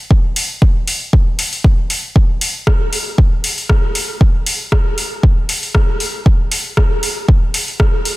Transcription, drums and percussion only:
0, 0, Header, 1, 2, 480
1, 0, Start_track
1, 0, Tempo, 512821
1, 99, Time_signature, 4, 2, 24, 8
1, 7644, End_track
2, 0, Start_track
2, 0, Title_t, "Drums"
2, 99, Note_on_c, 9, 36, 109
2, 192, Note_off_c, 9, 36, 0
2, 339, Note_on_c, 9, 46, 83
2, 433, Note_off_c, 9, 46, 0
2, 579, Note_on_c, 9, 36, 102
2, 673, Note_off_c, 9, 36, 0
2, 819, Note_on_c, 9, 46, 74
2, 913, Note_off_c, 9, 46, 0
2, 1059, Note_on_c, 9, 36, 115
2, 1152, Note_off_c, 9, 36, 0
2, 1299, Note_on_c, 9, 46, 82
2, 1392, Note_off_c, 9, 46, 0
2, 1429, Note_on_c, 9, 46, 34
2, 1523, Note_off_c, 9, 46, 0
2, 1539, Note_on_c, 9, 36, 112
2, 1632, Note_off_c, 9, 36, 0
2, 1779, Note_on_c, 9, 46, 65
2, 1872, Note_off_c, 9, 46, 0
2, 2019, Note_on_c, 9, 36, 112
2, 2112, Note_off_c, 9, 36, 0
2, 2259, Note_on_c, 9, 46, 83
2, 2352, Note_off_c, 9, 46, 0
2, 2499, Note_on_c, 9, 36, 107
2, 2499, Note_on_c, 9, 37, 76
2, 2592, Note_off_c, 9, 36, 0
2, 2593, Note_off_c, 9, 37, 0
2, 2739, Note_on_c, 9, 46, 69
2, 2832, Note_off_c, 9, 46, 0
2, 2979, Note_on_c, 9, 36, 119
2, 3072, Note_off_c, 9, 36, 0
2, 3219, Note_on_c, 9, 46, 77
2, 3313, Note_off_c, 9, 46, 0
2, 3350, Note_on_c, 9, 46, 33
2, 3444, Note_off_c, 9, 46, 0
2, 3459, Note_on_c, 9, 36, 107
2, 3459, Note_on_c, 9, 37, 76
2, 3552, Note_off_c, 9, 36, 0
2, 3552, Note_off_c, 9, 37, 0
2, 3699, Note_on_c, 9, 46, 69
2, 3792, Note_off_c, 9, 46, 0
2, 3938, Note_on_c, 9, 36, 109
2, 4032, Note_off_c, 9, 36, 0
2, 4179, Note_on_c, 9, 46, 80
2, 4272, Note_off_c, 9, 46, 0
2, 4418, Note_on_c, 9, 36, 104
2, 4419, Note_on_c, 9, 37, 81
2, 4512, Note_off_c, 9, 36, 0
2, 4513, Note_off_c, 9, 37, 0
2, 4659, Note_on_c, 9, 46, 68
2, 4752, Note_off_c, 9, 46, 0
2, 4898, Note_on_c, 9, 36, 113
2, 4992, Note_off_c, 9, 36, 0
2, 5139, Note_on_c, 9, 46, 73
2, 5232, Note_off_c, 9, 46, 0
2, 5269, Note_on_c, 9, 46, 33
2, 5363, Note_off_c, 9, 46, 0
2, 5378, Note_on_c, 9, 37, 76
2, 5379, Note_on_c, 9, 36, 101
2, 5472, Note_off_c, 9, 36, 0
2, 5472, Note_off_c, 9, 37, 0
2, 5618, Note_on_c, 9, 46, 62
2, 5712, Note_off_c, 9, 46, 0
2, 5858, Note_on_c, 9, 36, 111
2, 5952, Note_off_c, 9, 36, 0
2, 6098, Note_on_c, 9, 46, 81
2, 6192, Note_off_c, 9, 46, 0
2, 6338, Note_on_c, 9, 36, 99
2, 6338, Note_on_c, 9, 37, 83
2, 6432, Note_off_c, 9, 36, 0
2, 6432, Note_off_c, 9, 37, 0
2, 6579, Note_on_c, 9, 46, 67
2, 6672, Note_off_c, 9, 46, 0
2, 6818, Note_on_c, 9, 36, 112
2, 6912, Note_off_c, 9, 36, 0
2, 7059, Note_on_c, 9, 46, 76
2, 7152, Note_off_c, 9, 46, 0
2, 7189, Note_on_c, 9, 46, 31
2, 7283, Note_off_c, 9, 46, 0
2, 7298, Note_on_c, 9, 36, 103
2, 7299, Note_on_c, 9, 37, 79
2, 7392, Note_off_c, 9, 36, 0
2, 7392, Note_off_c, 9, 37, 0
2, 7539, Note_on_c, 9, 46, 62
2, 7632, Note_off_c, 9, 46, 0
2, 7644, End_track
0, 0, End_of_file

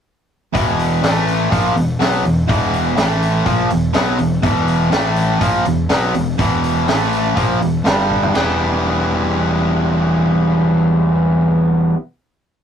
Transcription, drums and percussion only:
0, 0, Header, 1, 2, 480
1, 0, Start_track
1, 0, Key_signature, 1, "minor"
1, 0, Tempo, 487409
1, 539, Time_signature, 4, 2, 24, 8
1, 12444, End_track
2, 0, Start_track
2, 0, Title_t, "Drums"
2, 541, Note_on_c, 9, 36, 103
2, 541, Note_on_c, 9, 46, 82
2, 639, Note_off_c, 9, 36, 0
2, 640, Note_off_c, 9, 46, 0
2, 781, Note_on_c, 9, 46, 63
2, 879, Note_off_c, 9, 46, 0
2, 1018, Note_on_c, 9, 46, 77
2, 1024, Note_on_c, 9, 38, 109
2, 1117, Note_off_c, 9, 46, 0
2, 1123, Note_off_c, 9, 38, 0
2, 1263, Note_on_c, 9, 46, 57
2, 1361, Note_off_c, 9, 46, 0
2, 1500, Note_on_c, 9, 36, 110
2, 1503, Note_on_c, 9, 46, 80
2, 1598, Note_off_c, 9, 36, 0
2, 1602, Note_off_c, 9, 46, 0
2, 1742, Note_on_c, 9, 46, 61
2, 1841, Note_off_c, 9, 46, 0
2, 1979, Note_on_c, 9, 46, 80
2, 1985, Note_on_c, 9, 38, 115
2, 2078, Note_off_c, 9, 46, 0
2, 2084, Note_off_c, 9, 38, 0
2, 2218, Note_on_c, 9, 46, 56
2, 2316, Note_off_c, 9, 46, 0
2, 2455, Note_on_c, 9, 36, 110
2, 2460, Note_on_c, 9, 46, 76
2, 2554, Note_off_c, 9, 36, 0
2, 2559, Note_off_c, 9, 46, 0
2, 2693, Note_on_c, 9, 46, 63
2, 2791, Note_off_c, 9, 46, 0
2, 2928, Note_on_c, 9, 46, 78
2, 2934, Note_on_c, 9, 38, 114
2, 3026, Note_off_c, 9, 46, 0
2, 3032, Note_off_c, 9, 38, 0
2, 3176, Note_on_c, 9, 46, 57
2, 3274, Note_off_c, 9, 46, 0
2, 3407, Note_on_c, 9, 46, 71
2, 3408, Note_on_c, 9, 36, 100
2, 3506, Note_off_c, 9, 36, 0
2, 3506, Note_off_c, 9, 46, 0
2, 3646, Note_on_c, 9, 46, 53
2, 3744, Note_off_c, 9, 46, 0
2, 3880, Note_on_c, 9, 46, 72
2, 3886, Note_on_c, 9, 38, 111
2, 3978, Note_off_c, 9, 46, 0
2, 3984, Note_off_c, 9, 38, 0
2, 4121, Note_on_c, 9, 46, 52
2, 4219, Note_off_c, 9, 46, 0
2, 4366, Note_on_c, 9, 36, 103
2, 4366, Note_on_c, 9, 46, 77
2, 4464, Note_off_c, 9, 36, 0
2, 4464, Note_off_c, 9, 46, 0
2, 4607, Note_on_c, 9, 46, 57
2, 4705, Note_off_c, 9, 46, 0
2, 4844, Note_on_c, 9, 46, 73
2, 4850, Note_on_c, 9, 38, 109
2, 4943, Note_off_c, 9, 46, 0
2, 4949, Note_off_c, 9, 38, 0
2, 5084, Note_on_c, 9, 46, 59
2, 5182, Note_off_c, 9, 46, 0
2, 5328, Note_on_c, 9, 36, 106
2, 5328, Note_on_c, 9, 46, 89
2, 5426, Note_off_c, 9, 46, 0
2, 5427, Note_off_c, 9, 36, 0
2, 5567, Note_on_c, 9, 46, 58
2, 5666, Note_off_c, 9, 46, 0
2, 5803, Note_on_c, 9, 46, 81
2, 5809, Note_on_c, 9, 38, 110
2, 5901, Note_off_c, 9, 46, 0
2, 5907, Note_off_c, 9, 38, 0
2, 6051, Note_on_c, 9, 46, 57
2, 6149, Note_off_c, 9, 46, 0
2, 6292, Note_on_c, 9, 46, 84
2, 6294, Note_on_c, 9, 36, 106
2, 6390, Note_off_c, 9, 46, 0
2, 6392, Note_off_c, 9, 36, 0
2, 6536, Note_on_c, 9, 46, 66
2, 6635, Note_off_c, 9, 46, 0
2, 6775, Note_on_c, 9, 46, 83
2, 6781, Note_on_c, 9, 38, 106
2, 6874, Note_off_c, 9, 46, 0
2, 6880, Note_off_c, 9, 38, 0
2, 7017, Note_on_c, 9, 46, 60
2, 7116, Note_off_c, 9, 46, 0
2, 7257, Note_on_c, 9, 36, 100
2, 7258, Note_on_c, 9, 46, 79
2, 7356, Note_off_c, 9, 36, 0
2, 7356, Note_off_c, 9, 46, 0
2, 7503, Note_on_c, 9, 46, 53
2, 7602, Note_off_c, 9, 46, 0
2, 7735, Note_on_c, 9, 46, 70
2, 7741, Note_on_c, 9, 38, 113
2, 7834, Note_off_c, 9, 46, 0
2, 7840, Note_off_c, 9, 38, 0
2, 7981, Note_on_c, 9, 36, 55
2, 8080, Note_off_c, 9, 36, 0
2, 8106, Note_on_c, 9, 43, 92
2, 8204, Note_off_c, 9, 43, 0
2, 8224, Note_on_c, 9, 52, 77
2, 8230, Note_on_c, 9, 38, 99
2, 8322, Note_off_c, 9, 52, 0
2, 8328, Note_off_c, 9, 38, 0
2, 12444, End_track
0, 0, End_of_file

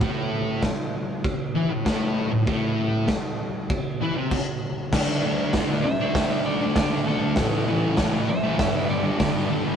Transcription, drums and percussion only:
0, 0, Header, 1, 2, 480
1, 0, Start_track
1, 0, Tempo, 612870
1, 9, Time_signature, 4, 2, 24, 8
1, 7644, End_track
2, 0, Start_track
2, 0, Title_t, "Drums"
2, 6, Note_on_c, 9, 49, 57
2, 10, Note_on_c, 9, 36, 112
2, 85, Note_off_c, 9, 49, 0
2, 88, Note_off_c, 9, 36, 0
2, 489, Note_on_c, 9, 38, 107
2, 491, Note_on_c, 9, 36, 105
2, 492, Note_on_c, 9, 49, 54
2, 567, Note_off_c, 9, 38, 0
2, 569, Note_off_c, 9, 36, 0
2, 571, Note_off_c, 9, 49, 0
2, 974, Note_on_c, 9, 49, 54
2, 975, Note_on_c, 9, 36, 110
2, 1052, Note_off_c, 9, 49, 0
2, 1053, Note_off_c, 9, 36, 0
2, 1457, Note_on_c, 9, 36, 110
2, 1457, Note_on_c, 9, 38, 109
2, 1461, Note_on_c, 9, 49, 51
2, 1536, Note_off_c, 9, 36, 0
2, 1536, Note_off_c, 9, 38, 0
2, 1539, Note_off_c, 9, 49, 0
2, 1936, Note_on_c, 9, 49, 55
2, 1937, Note_on_c, 9, 36, 112
2, 2014, Note_off_c, 9, 49, 0
2, 2015, Note_off_c, 9, 36, 0
2, 2412, Note_on_c, 9, 38, 113
2, 2415, Note_on_c, 9, 49, 56
2, 2417, Note_on_c, 9, 36, 104
2, 2490, Note_off_c, 9, 38, 0
2, 2493, Note_off_c, 9, 49, 0
2, 2495, Note_off_c, 9, 36, 0
2, 2896, Note_on_c, 9, 49, 58
2, 2898, Note_on_c, 9, 36, 108
2, 2974, Note_off_c, 9, 49, 0
2, 2976, Note_off_c, 9, 36, 0
2, 3379, Note_on_c, 9, 36, 104
2, 3380, Note_on_c, 9, 57, 97
2, 3457, Note_off_c, 9, 36, 0
2, 3458, Note_off_c, 9, 57, 0
2, 3858, Note_on_c, 9, 38, 110
2, 3859, Note_on_c, 9, 36, 113
2, 3861, Note_on_c, 9, 57, 126
2, 3936, Note_off_c, 9, 38, 0
2, 3937, Note_off_c, 9, 36, 0
2, 3940, Note_off_c, 9, 57, 0
2, 4333, Note_on_c, 9, 38, 111
2, 4337, Note_on_c, 9, 46, 62
2, 4338, Note_on_c, 9, 36, 105
2, 4412, Note_off_c, 9, 38, 0
2, 4415, Note_off_c, 9, 46, 0
2, 4416, Note_off_c, 9, 36, 0
2, 4816, Note_on_c, 9, 36, 115
2, 4816, Note_on_c, 9, 38, 117
2, 4819, Note_on_c, 9, 46, 64
2, 4895, Note_off_c, 9, 36, 0
2, 4895, Note_off_c, 9, 38, 0
2, 4898, Note_off_c, 9, 46, 0
2, 5291, Note_on_c, 9, 38, 119
2, 5294, Note_on_c, 9, 36, 118
2, 5295, Note_on_c, 9, 46, 63
2, 5370, Note_off_c, 9, 38, 0
2, 5373, Note_off_c, 9, 36, 0
2, 5373, Note_off_c, 9, 46, 0
2, 5764, Note_on_c, 9, 38, 116
2, 5767, Note_on_c, 9, 46, 65
2, 5772, Note_on_c, 9, 36, 119
2, 5842, Note_off_c, 9, 38, 0
2, 5845, Note_off_c, 9, 46, 0
2, 5850, Note_off_c, 9, 36, 0
2, 6244, Note_on_c, 9, 38, 116
2, 6247, Note_on_c, 9, 46, 65
2, 6250, Note_on_c, 9, 36, 109
2, 6322, Note_off_c, 9, 38, 0
2, 6326, Note_off_c, 9, 46, 0
2, 6329, Note_off_c, 9, 36, 0
2, 6729, Note_on_c, 9, 36, 117
2, 6729, Note_on_c, 9, 38, 123
2, 6732, Note_on_c, 9, 46, 66
2, 6807, Note_off_c, 9, 38, 0
2, 6808, Note_off_c, 9, 36, 0
2, 6810, Note_off_c, 9, 46, 0
2, 7204, Note_on_c, 9, 38, 121
2, 7206, Note_on_c, 9, 36, 115
2, 7207, Note_on_c, 9, 46, 71
2, 7283, Note_off_c, 9, 38, 0
2, 7285, Note_off_c, 9, 36, 0
2, 7286, Note_off_c, 9, 46, 0
2, 7644, End_track
0, 0, End_of_file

